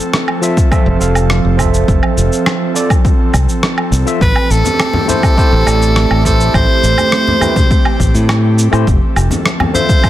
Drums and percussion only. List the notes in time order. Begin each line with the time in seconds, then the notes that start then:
0.14 cross-stick, cabasa
0.28 low woodblock
0.43 cabasa
0.57 kick, cabasa
0.72 kick, cabasa, low woodblock
1.01 cabasa
1.15 cabasa, low woodblock
1.30 cross-stick, cabasa
1.59 kick, cabasa, low woodblock
1.74 cabasa
1.88 kick, cabasa
2.03 low woodblock
2.18 cabasa
2.32 cabasa
2.46 cross-stick, cabasa, low woodblock
2.76 cabasa
2.90 kick, cabasa, low woodblock
3.05 kick, cabasa
3.34 kick, cabasa, low woodblock
3.49 cabasa
3.63 cross-stick, cabasa
3.78 low woodblock
3.93 cabasa
4.07 cabasa
4.21 kick, cabasa
4.36 low woodblock
4.51 cabasa
4.65 low conga, cabasa
4.80 cross-stick, cabasa, low woodblock
4.93 low conga
5.09 low conga, cabasa
5.23 kick, cabasa, low woodblock
5.38 kick, cabasa
5.67 cabasa, low woodblock
5.82 cabasa
5.96 cross-stick, cabasa
6.11 low woodblock
6.25 kick, cabasa
6.40 cabasa
6.54 kick, cabasa, low woodblock
6.84 cabasa
6.98 low conga, cabasa, low woodblock
7.12 cross-stick, cabasa
7.27 low conga
7.41 low conga, cabasa, low woodblock
7.56 kick, high conga, cabasa
7.71 kick, cabasa
7.85 low woodblock
8.00 kick, cabasa
8.15 cabasa
8.29 cross-stick, cabasa, low woodblock
8.59 cabasa
8.73 cabasa, low woodblock
8.87 kick, cabasa
9.16 cabasa, low woodblock
9.31 low conga, cabasa
9.46 cross-stick, cabasa
9.60 low conga, low woodblock
9.74 low conga, cabasa
9.89 kick, cabasa
10.04 kick, cabasa, low woodblock